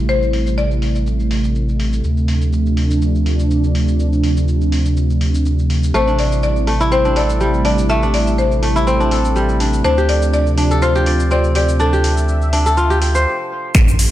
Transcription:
Already playing: sub bass A1, analog synth pad C3 G3 A3 E4, marimba D5
0.09 marimba C5, shaker
0.22 shaker
0.33 open hi-hat
0.47 shaker
0.58 marimba D5, shaker
0.71 shaker
0.82 open hi-hat
0.96 shaker
1.07 shaker
1.20 shaker
1.31 open hi-hat
1.44 shaker
1.56 shaker
1.69 shaker
1.80 open hi-hat
1.93 shaker
2.04 sub bass D2, analog synth pad F3 D4, shaker
2.17 shaker
2.28 open hi-hat
2.42 shaker
2.53 shaker
2.66 shaker
2.77 open hi-hat
2.91 shaker
3.02 shaker
3.15 shaker
3.26 open hi-hat
3.40 shaker
3.51 shaker
3.64 shaker
3.75 open hi-hat
3.88 shaker
4.00 shaker
4.13 shaker
4.24 open hi-hat
4.37 shaker
4.48 shaker
4.61 shaker
4.72 open hi-hat
4.86 shaker
4.97 shaker
5.10 shaker
5.21 open hi-hat
5.35 shaker
5.46 shaker
5.59 shaker
5.70 open hi-hat
5.83 shaker
5.94 sub bass A1, analog synth pad G3 A3 E4, kora A3, marimba C5, shaker
6.07 kora D4, shaker
6.19 marimba D5, open hi-hat
6.32 shaker
6.43 marimba D5, shaker
6.56 shaker
6.67 kora A3, open hi-hat
6.81 kora E4, shaker
6.92 kora C4, marimba C5, shaker
7.05 kora D4, shaker
7.16 kora A4, marimba D5, open hi-hat
7.30 shaker
7.41 kora G3, shaker
7.54 shaker
7.65 kora D4, marimba D5, open hi-hat
7.78 shaker
7.89 kora A3, marimba E5, shaker
8.03 kora D4, shaker
8.14 marimba D5, open hi-hat
8.27 shaker
8.38 marimba C5, shaker
8.52 shaker
8.63 kora A3, open hi-hat
8.76 kora E4, shaker
8.87 kora C4, shaker
9.00 kora D4, shaker
9.11 kora A4, open hi-hat
9.25 shaker
9.36 kora G3, shaker
9.49 shaker
9.60 kora D4, open hi-hat
9.73 shaker
9.84 sub bass D2, analog synth pad C3 F3 D4, kora D4, marimba C5, shaker
9.98 kora G4, shaker
10.09 marimba D5, open hi-hat
10.22 shaker
10.33 marimba D5, shaker
10.47 shaker
10.58 kora D4, open hi-hat
10.71 kora A4, shaker
10.82 kora F4, marimba C5, shaker
10.95 kora G4, shaker
11.06 kora D5, open hi-hat
11.20 shaker
11.31 kora C4, marimba D5, shaker
11.44 shaker
11.55 kora G4, marimba D5, open hi-hat
11.69 shaker
11.80 kora D4, marimba A4, analog synth pad E5, shaker
11.93 kora G4, shaker
12.04 open hi-hat
12.17 shaker
12.29 shaker
12.42 shaker
12.53 kora D4, open hi-hat
12.66 kora A4, shaker
12.77 kora F4, shaker
12.90 kora G4, shaker
13.02 kora G4, open hi-hat
13.15 kora C5, shaker
13.75 sub bass A1, analog synth pad C3 G3 A3 E4, finger snap, kick, closed hi-hat, mid tom, shaker
13.88 shaker
13.99 open hi-hat

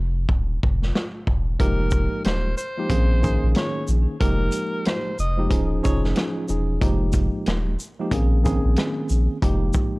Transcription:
Already playing: sub bass F1
0.29 sub bass D#1, kick
0.63 sub bass F1, kick
0.82 snare
0.95 cross-stick, snare
1.27 sub bass E1, kick
1.59 sub bass F1, tine electric piano F3 G#3 A#3 D#4 G4, tenor saxophone A#4, kick, closed hi-hat
1.91 kick, shaker
2.24 sub bass D#1, tenor saxophone C5, cross-stick, snare, closed hi-hat
2.57 tenor saxophone C5, shaker
2.77 tine electric piano F3 G#3 A#3 D#4 G4
2.90 sub bass A#1, tine electric piano D#3 A#3 C4 C#4 G#4, kick, closed hi-hat
3.22 tine electric piano D#3 A#3 C#4 D#4 G#4, kick, closed hi-hat, shaker
3.43 sub bass A#1
3.55 tenor saxophone C#5, cross-stick, snare, closed hi-hat
3.88 sub bass A#1, shaker
4.20 sub bass F1, tine electric piano F3 G#3 A#3 D#4 G4, tenor saxophone A#4, kick, closed hi-hat
4.52 closed hi-hat, shaker
4.85 tenor saxophone C5, cross-stick, snare, closed hi-hat
5.19 sub bass F1, tenor saxophone D#5, shaker
5.37 tine electric piano F3 G#3 A#3 D#4 G4
5.49 sub bass D#1, tine electric piano F3 C#4 D#4 G#4, kick, closed hi-hat
5.82 sub bass F1, tine electric piano F3 C#4 D#4 G#4, tenor saxophone C#5, kick, closed hi-hat, shaker
6.04 snare
6.16 cross-stick, snare, closed hi-hat
6.48 sub bass E1, tine electric piano F3 C#4 D#4 G#4, shaker
6.81 sub bass F1, tine electric piano F3 G#3 A#3 D#4 G4, kick, closed hi-hat
7.13 kick, closed hi-hat, shaker
7.46 sub bass D#1, cross-stick, snare, closed hi-hat
7.80 shaker
7.99 tine electric piano F3 G#3 A#3 D#4 G4
8.11 sub bass A#1, tine electric piano D#3 A#3 C4 C#4 G#4, kick, closed hi-hat
8.43 tine electric piano D#3 A#3 C4 C#4 G#4, kick, closed hi-hat, shaker
8.65 sub bass A#1
8.76 cross-stick, snare, closed hi-hat
9.09 sub bass A#1, shaker
9.42 sub bass F1, tine electric piano F3 G#3 A#3 D#4 G4, kick, closed hi-hat
9.73 kick, shaker

